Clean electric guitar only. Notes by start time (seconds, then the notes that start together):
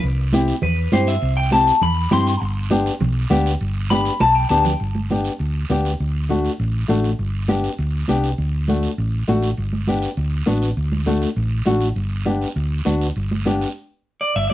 0.63 B4
0.93 C5
1.08 E5
1.36 G5
1.52 A5
1.83 B5
2.13 C6
3.90 B5
4.21 A5
4.35 G5
4.49 A5
4.64 G5
14.21 D5
14.36 E5
14.50 D5